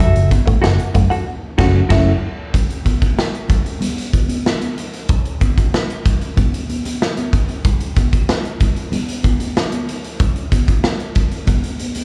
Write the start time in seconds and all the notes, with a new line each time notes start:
0.00 F#1 F#3 F#4 A4 E5, low conga
0.16 F#1, closed hi-hat
0.31 muted clean electric guitar stroke, kick, closed hi-hat, muted conga, high conga
0.46 A1 A3, muted clean electric guitar stroke, kick, closed hi-hat
0.62 F#1 F#4 A4 F#5, snare
0.79 closed hi-hat
0.94 F#2 A3, muted clean electric guitar stroke, kick, closed hi-hat, muted conga
1.10 F#4 A4 F#5, closed hi-hat
1.58 F#1 F#3 A3 C#4 F#4 A4 F#5, kick, snare, crash
1.89 F#1 F#3 A3 C#4 E4 F#4 A4 E5, kick, snare, crash
2.54 kick, closed hi-hat, low conga
2.70 closed hi-hat
2.85 kick, closed hi-hat, muted conga, high conga
3.02 kick, closed hi-hat
3.17 snare, muted conga
3.35 closed hi-hat
3.49 kick, closed hi-hat, muted conga, low conga
3.66 closed hi-hat
3.81 closed hi-hat, muted conga, high conga, low conga
3.98 closed hi-hat
4.13 kick, closed hi-hat, high conga
4.29 closed hi-hat, high conga
4.45 snare, muted conga
4.61 closed hi-hat, high conga
4.76 closed hi-hat, muted conga
4.93 closed hi-hat
5.09 kick, closed hi-hat, muted conga, low conga
5.25 closed hi-hat
5.40 kick, closed hi-hat, high conga
5.58 kick, closed hi-hat
5.74 snare, muted conga
5.90 closed hi-hat
6.05 kick, closed hi-hat, muted conga, low conga
6.21 closed hi-hat
6.37 kick, closed hi-hat, high conga, low conga
6.54 closed hi-hat
6.69 closed hi-hat, muted conga, high conga
6.85 closed hi-hat, high conga
7.02 snare, muted conga
7.17 closed hi-hat, high conga
7.33 kick, closed hi-hat, muted conga
7.49 closed hi-hat
7.65 kick, closed hi-hat, muted conga, low conga
7.80 closed hi-hat
7.96 kick, closed hi-hat, muted conga, high conga
8.13 kick, closed hi-hat
8.29 snare
8.45 closed hi-hat
8.60 kick, closed hi-hat, muted conga, low conga
8.76 closed hi-hat
8.92 closed hi-hat, muted conga, high conga, low conga
9.08 closed hi-hat
9.23 kick, closed hi-hat, muted conga, high conga
9.40 closed hi-hat, high conga
9.56 snare, muted conga
9.72 closed hi-hat, high conga
9.88 closed hi-hat, muted conga
10.04 closed hi-hat
10.20 kick, closed hi-hat, muted conga, low conga
10.36 closed hi-hat
10.52 kick, closed hi-hat, muted conga, high conga
10.68 kick, closed hi-hat
10.84 snare, muted conga
11.00 closed hi-hat
11.15 kick, closed hi-hat, low conga
11.31 closed hi-hat
11.47 kick, closed hi-hat, muted conga, high conga, low conga
11.64 closed hi-hat
11.79 closed hi-hat, muted conga, high conga
11.95 closed hi-hat, high conga